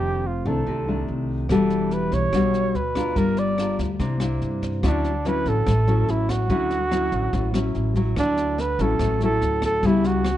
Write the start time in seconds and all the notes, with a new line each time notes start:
Already playing: F1 F2 D#3 A3 D4 G4
0.27 F4
0.45 C2 D#3 A3 D4 A4
0.67 C3
0.88 D#3 A3 D4
1.08 C2
1.49 E1 E3 G3 D4 F#4 A4, kick, cross-stick, snare
1.70 snare
1.91 B4, snare
2.12 B1 C#5, kick, snare
2.33 B1 B2 G3 D4 F#4, kick, cross-stick, snare
2.54 snare
2.75 D2 B4, snare
2.95 D4 F4 A#4, kick, cross-stick, snare
3.16 G1 G3 A#4, kick, snare
3.37 D5, snare
3.58 D4 F4 A#4, cross-stick, snare
3.79 D2, kick, snare
3.99 C2 C3 A#3 D4 E4, kick, snare
4.20 A#3 D4 E4, cross-stick, snare
4.42 G2, snare
4.62 kick, snare
4.83 D2 D3 F#3 C#4 D4 E4, kick, cross-stick, snare
5.04 snare
5.25 F#3 C#4 E4 B4, snare
5.46 A1 A4, kick, snare
5.66 A1 A2, kick, cross-stick, snare
5.87 F#3 C#4 E4, snare
6.08 A1 E4, snare
6.29 F#4, kick, cross-stick, snare
6.50 D2 D3 F#3 C#4 E4, kick, snare
6.70 snare
6.91 F#3 C#4 E4, cross-stick, snare
7.12 A1, kick, snare
7.33 A1 A2, kick, snare
7.54 F#3 C#4 E4, cross-stick, snare
7.75 A1, snare
7.96 F#3 E4, kick, snare
8.16 D2 D3 D4, kick, cross-stick, snare
8.37 snare
8.58 B4, snare
8.79 A1 F#3 C#4 E4 A4, kick, snare
8.99 A1 A2, kick, cross-stick, snare
9.21 F#3 C#4 E4 A4, snare
9.41 D2, snare
9.62 A4, kick, cross-stick, snare
9.83 C#2 C#3 G3 B3 E4, kick, snare
10.04 F#4, snare
10.25 cross-stick, snare